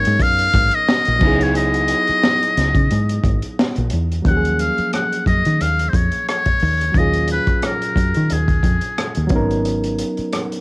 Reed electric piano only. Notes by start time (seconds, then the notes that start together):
Already playing: F#3 B3 C#4 D#4 G#4 A#4 C#5
1.19 F#3 B3
1.23 D#4 E4
1.27 G#4
4.22 F#3 A#3
4.26 F3 C#4
4.30 G4
4.37 G#4
6.92 A#2 F#3
6.96 C#4 F4 G#4
9.27 F#3 B3
9.32 C#4 D#4
9.36 A#4